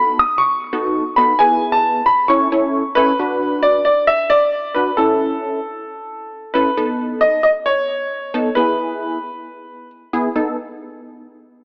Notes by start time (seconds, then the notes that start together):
Already playing: B3 D#4 F#4 A4 B5
0.19 D#6
0.38 C#6
0.73 B3 D#4 F#4 A4
1.16 B3 D#4 F#4 A4 B5
1.39 B3 E4 G#4 B4 G#5
1.72 A5
2.06 B5
2.28 C#4 E4 A4 C#5 C#6
2.52 C#4 E4 A4 C#5
2.95 C#4 E4 A4 B4 C#5
3.19 D4 F#4 B4
3.63 D5
3.85 D5
4.07 E5
4.30 D5
4.74 D4 F#4 B4
4.97 C#4 E4 A4
6.54 C#4 E4 A4 B4
6.77 B3 D#4 A4
7.21 D#5
7.43 D#5
7.66 C#5
8.34 B3 D#4 A4
8.55 B3 E4 G#4 B4
10.13 B3 E4 G#4
10.36 B3 D#4 A4